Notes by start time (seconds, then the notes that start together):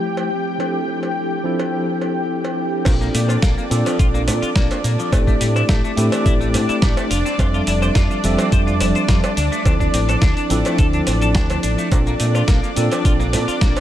Already playing: F3 A3 C4 E4 G4 G5
0.17 cowbell
0.58 F3 C4 D4 E4 A4, cowbell
1.03 cowbell
1.44 F3 C4 D4 E4 A4
1.59 cowbell
2.02 cowbell
2.44 cowbell
2.85 A#1 A#3 C4 D4 F4 A4 D5, kick, closed hi-hat, crash, cowbell, shaker
3.01 A#3, shaker
3.14 A#2 A3, open hi-hat, shaker
3.29 F4, cowbell, shaker
3.42 A#1 A#3, kick, snare, closed hi-hat, shaker
3.58 A#3, shaker
3.70 A#2 C4 D4 F4 A4, open hi-hat, shaker
3.86 F3, closed hi-hat, cowbell, shaker
3.99 A#1 F4, kick, closed hi-hat, shaker
4.14 A#3, shaker
4.27 A#2 A3, open hi-hat, cowbell, shaker
4.42 F4, muted fingered electric bass stroke, closed hi-hat, shaker
4.56 A#1 A#3, kick, snare, closed hi-hat, shaker
4.71 A#3, closed hi-hat, cowbell, shaker
4.84 A#2 A#3, open hi-hat, shaker
4.99 F3, shaker
5.11 A1 A3 C4 E4 G4 A4, kick, closed hi-hat, cowbell, shaker
5.27 A3, kick, shaker
5.40 A2 G3, open hi-hat, shaker
5.56 E4, cowbell, shaker
5.69 A1 A3, kick, snare, closed hi-hat, shaker
5.84 A3, shaker
5.96 A2 A3 C4 E4 G4 A4, open hi-hat, shaker
6.12 E3, closed hi-hat, cowbell, shaker
6.26 A1 E4, kick, closed hi-hat, shaker
6.41 A3, shaker
6.54 A2 G3, open hi-hat, cowbell, shaker
6.69 E4, muted fingered electric bass stroke, closed hi-hat, shaker
6.82 A1 A3, kick, snare, closed hi-hat, shaker
6.97 A3, closed hi-hat, cowbell, shaker
7.11 F1 F4, open hi-hat, shaker
7.26 C4, shaker
7.38 F2 F3 G3 C4 F4 A4 E5, kick, closed hi-hat, cowbell, shaker
7.54 F4, shaker
7.67 F1 E4, open hi-hat, shaker
7.82 C5, cowbell, shaker
7.95 F2 F4, kick, snare, closed hi-hat, shaker
8.10 F4, shaker
8.23 F1 F3 G3 C4 A4 E5, open hi-hat, shaker
8.38 C4, closed hi-hat, cowbell, shaker
8.52 F2 C5, kick, closed hi-hat, shaker
8.67 F4, shaker
8.80 F1 E4, open hi-hat, cowbell, shaker
8.95 C5, closed hi-hat, shaker
9.08 F2 F4, kick, snare, closed hi-hat, shaker
9.24 F4, closed hi-hat, cowbell, shaker
9.37 D2 D4, open hi-hat, shaker
9.52 A3, shaker
9.65 D2 F3 C4 D4 E4 A4, kick, closed hi-hat, cowbell, shaker
9.80 D4, kick, shaker
9.94 A1 C4, open hi-hat, shaker
10.09 A4, closed hi-hat, cowbell, shaker
10.22 D2 D4, kick, snare, closed hi-hat, shaker
10.37 D4, closed hi-hat, shaker
10.49 A1 D3 F3 C4 D4 E4 A4, open hi-hat, shaker
10.65 A3, closed hi-hat, cowbell, shaker
10.78 D2 A4, kick, closed hi-hat, shaker
10.93 D4, closed hi-hat, shaker
11.07 A1 C4, open hi-hat, cowbell, shaker
11.22 A4, closed hi-hat, shaker
11.35 D2 D4, kick, snare, closed hi-hat, shaker
11.50 D4, closed hi-hat, cowbell, shaker
11.63 A1 D4, open hi-hat, shaker
11.78 A3, shaker
11.91 A#1 A#3 C4 D4 F4 A4 D5, kick, closed hi-hat, cowbell, shaker
12.07 A#3, shaker
12.20 A#2 A3, open hi-hat, shaker
12.35 F4, cowbell, shaker
12.48 A#1 A#3, kick, snare, closed hi-hat, shaker
12.63 A#3, shaker
12.76 A#2 C4 D4 F4 A4, open hi-hat, shaker
12.91 F3, closed hi-hat, cowbell, shaker
13.05 A#1 F4, kick, closed hi-hat, shaker
13.20 A#3, shaker
13.33 A#2 A3, open hi-hat, cowbell, shaker
13.48 F4, muted fingered electric bass stroke, closed hi-hat, shaker
13.61 A#1 A#3, kick, snare, closed hi-hat, shaker
13.76 A#3, closed hi-hat, cowbell, shaker